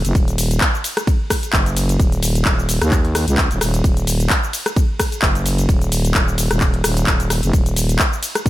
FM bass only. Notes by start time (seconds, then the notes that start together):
0.05 F#1
0.15 D#1
1.53 F#1
2.00 D#1
2.46 D#1
2.82 D#2
3.28 C#2
3.51 D#1
3.61 D#1
3.84 D#1
5.23 F#1
5.69 D#1
6.15 D#1
6.51 D#1
6.84 D#1
7.07 D#1
7.43 F#1
7.53 D#1